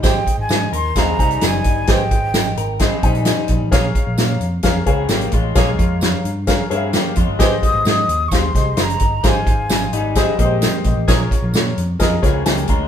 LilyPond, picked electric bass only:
\new Staff \with { instrumentName = "Picked electric bass" } { \clef bass \time 4/4 \key aes \major \tempo 4 = 130 aes,,8 r16 aes,,16 aes,8 ees,8 ees,8 c,8 ges,,8 g,,8 | aes,,4. aes,,4 bes,,8. r16 bes,,16 a,,16 | bes,,8 r16 bes,,16 bes,8 f,8 f,8 des,8 aes,,8 a,,8 | bes,,8 f,4 g,4 g,8. r16 f,16 g,,16 |
aes,,8 r16 aes,,16 aes,8 ees,8 ees,8 c,8 ges,,8 g,,8 | aes,,4. aes,,4 bes,,8. r16 bes,,16 a,,16 | bes,,8 r16 bes,,16 bes,8 f,8 f,8 des,8 des,8 d,8 | }